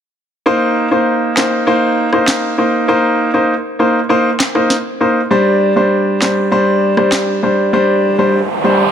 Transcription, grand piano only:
0.46 A#3 D#4 C5
0.91 A#3 D#4 C5
1.37 A#3 D#4 C5
1.67 A#3 D#4 C5
2.13 A#3 D#4 C5
2.58 A#3 D#4 C5
2.88 A#3 D#4 C5
3.34 A#3 D#4 C5
3.79 A#3 D#4 C5
4.09 A#3 D#4 C5
4.55 A#3 D#4 C5
5.00 A#3 D#4 C5
5.31 G3 D4 C5
5.76 G3 D4 C5
6.21 G3 D4 C5
6.52 G3 D4 C5
6.97 G3 D4 C5
7.43 G3 D4 C5
7.73 G3 D4 C5
8.18 G3 D4 C5
8.64 G3 D4 C5

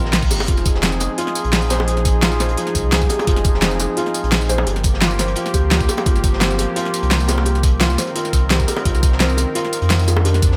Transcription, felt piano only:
Already playing: C4 F4 G4 C5
0.31 G4
0.48 F4
0.83 C4
1.18 F4
1.70 C5
1.88 G#4
2.23 F4
2.40 C5
2.57 F4
2.92 G#4
3.10 G4
3.28 F4
3.62 C4
3.97 F4
4.49 C5
4.67 G4
5.01 F4
5.19 C5
5.37 F4
5.54 G4
5.71 F4
5.89 G4
6.06 F4
6.41 C4
6.76 F4
7.28 F4
7.46 G4
7.81 F4
7.98 C5
8.16 F4
8.51 G4
8.68 G4
8.85 F4
9.20 C4
9.55 F4
10.07 F4
10.25 G4

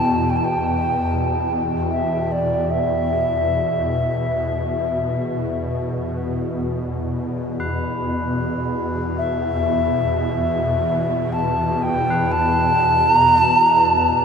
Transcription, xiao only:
Already playing: A5
0.30 G5
0.36 A5
0.44 G5
1.90 E5
2.32 D5
2.70 E5
9.18 E5
11.32 A5
11.82 G5
12.32 A5
13.14 A#5
13.37 A5
13.61 A#5
13.83 A5

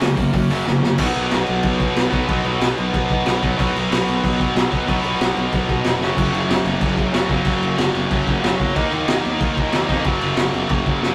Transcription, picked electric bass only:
0.00 C#2
0.18 F#2
0.33 F#2
0.50 F#1
0.68 F#1
0.83 F#1
0.99 B1
1.16 B1
1.33 B1
1.49 B1
1.64 B1
1.96 B1
2.12 B1
2.29 B1
2.45 B1
2.61 B1
2.79 B1
2.94 B1
3.10 B1
3.27 B1
3.43 B1
3.59 B1
3.76 B1
3.91 B1
4.08 B1
4.24 B1
4.55 B1
4.72 B1
4.88 B1
5.04 B1
5.21 B1
5.37 B1
5.53 B1
5.69 B1
5.85 F1
6.02 F#1
6.17 F#1
6.33 F#1
6.49 F#1
6.65 F#1
6.82 F#1
7.14 F#1
7.29 F#1
7.46 F#1
7.60 F#1
7.78 F#1
7.95 F#1
8.11 F#1
8.28 F#1
8.44 F#1
8.60 F#1
8.76 D#2
8.92 D#2
9.08 D#2
9.26 D#2
9.40 D#2
9.74 D#2
9.89 F2
10.05 F#1
10.22 F#1
10.37 F#1
10.53 F#1
10.70 F#1
10.87 F#1
11.01 F#1

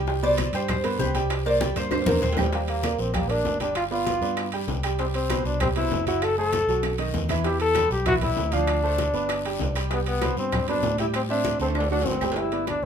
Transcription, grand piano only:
0.07 G3 G4 G5
0.23 B2 B4 C5
0.54 G3 G4 G5
0.84 B3 B4 C5
0.99 B3 B4 C5
1.15 G3 G4 G5
1.46 A#3 A#4 C5
1.61 G3 G4 G5
1.77 A#3 A#4 C5
2.08 A#3 A#4 C5
2.38 G3 G4 G5
2.54 G3 G4 G5
2.84 A#3 A#4 D5
3.14 G3 G4 G5
3.30 A#3 A#4 D5
3.61 G3 G4 G5
3.91 B3 B4 D5
4.22 B3 B4 D5
4.53 G3 G4 G5
4.84 G3 G4 G5
5.00 G3 G4 G5
5.30 B2 B4 C5
5.61 G3 G4 G5
5.76 B2 B4 C5
6.07 F#3 F#4 F#5
6.38 A3 A4 C5
6.69 F#3 F#4 A4
6.99 D#3 D#4 D#5
7.30 E3 E4 E5
7.45 E3 E4 E5
7.76 G3 G4 B4
8.06 E3 E4 E5
8.22 G3 G4 B4
8.53 F3 F4 F5
8.83 A3 A4 C5
9.14 B3 B4 D5
9.45 G3 G4 G5
9.76 G3 G4 G5
9.91 G3 G4 G5
10.22 B2 B4 C5
10.53 G3 G4 G5
10.68 B2 B4 C5
10.99 G3 G4 G5
11.30 C4 C5 E5
11.61 A3 A4 C5
11.91 F#3 F#4 F#5
12.22 G3 G4 G5
12.37 G3 G4 G5
12.52 B3 B4 D5

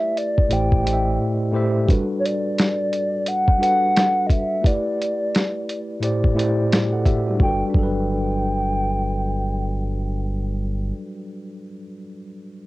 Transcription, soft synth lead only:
Already playing: E5
0.18 D5
0.53 G5
2.19 C#5
2.26 D5
3.28 F#5
3.63 F#5
4.27 D#5
4.32 E5
4.67 D5
7.42 G5
7.77 G5

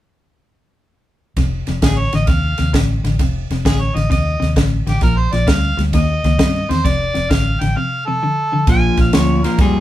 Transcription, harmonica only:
1.84 G#4
1.99 C#5
2.15 D#5
2.28 F5
3.66 G#4
3.82 C#5
3.95 D#5
4.12 D#5
4.89 G4
5.03 A#4
5.18 C5
5.33 D5
5.49 F5
5.95 D#5
6.71 C5
6.86 D5
7.31 F5
7.61 G5
7.77 F5
8.06 A4
8.70 G#5
9.01 F5
9.13 C#5
9.45 A#4
9.61 G#4

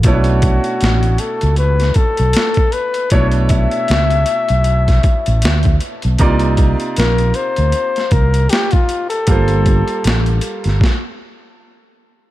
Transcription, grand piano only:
0.05 B2 A3 C#4 E4 C#5
0.13 D4
3.12 B2 A3 D4 E4 C#5
6.19 C3 A#3 D#4 F4 D5
9.27 G3 A#3 F4 A4 C5

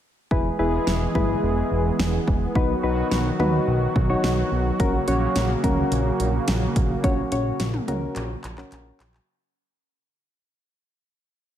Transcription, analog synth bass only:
0.31 E1
0.59 E1
0.87 E1
1.15 G#1
1.43 E1
1.71 E1
1.99 E1
2.28 E1
2.56 B1
2.83 B1
3.11 B1
3.39 D#2
3.67 B1
3.96 B1
4.24 B1
4.52 B1
4.80 A#1
5.08 A#1
5.36 A#1
5.64 C#2
5.92 A#1
6.20 A#1
6.48 A#1
6.76 A#1
7.04 A#1
7.32 A#1
7.60 A#1
7.88 C#2
8.16 A#1
8.44 A#1
8.72 A#1
9.00 A#1

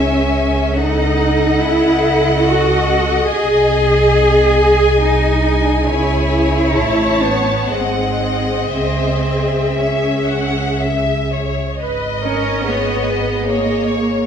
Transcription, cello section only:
Already playing: C#4
0.78 D#4
1.63 E4
2.46 F#4
3.31 G#4
5.04 D#4
5.90 E4
7.24 B3
7.71 C4
8.73 C4
9.78 C#4
12.24 C#4
12.67 B3
13.48 A#3

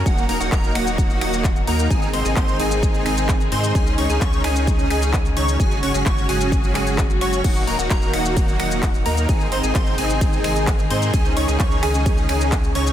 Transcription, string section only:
0.06 A#2 D#3 F#3 D#4 F#4
1.91 C3 G#3 G#4
3.75 C#3
5.60 G#2 F#3 C#4 F#4
7.44 A#2 D#3 D#4
9.29 C3 D#3 G#3 G#4
11.14 C#3 G#3

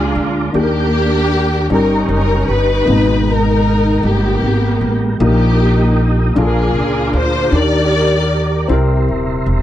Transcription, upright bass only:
Already playing: C#2
0.15 D2
0.54 D#2
1.70 G1
2.09 F#1
2.48 G1
2.87 G#1
4.03 G1
4.42 G#1
4.81 A1
5.20 A#1
6.36 A#1
6.75 C#2
7.13 D2
7.52 D#2
8.69 C2
9.08 D#1
9.46 E1

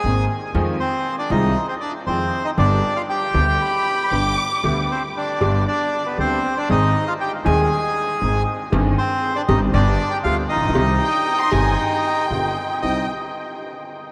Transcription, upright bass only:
0.04 G#1
0.54 F2
1.30 C2
2.07 F2
2.58 G1
3.34 D2
4.11 G1
4.64 D2
5.41 G1
6.18 D2
6.70 G#1
7.46 D#2
8.22 G#1
8.73 G1
9.49 G1
9.74 G1
10.24 D2
10.56 A1
10.63 A#1
10.69 B1
10.75 C2
11.52 G1
12.30 G1
12.83 C2

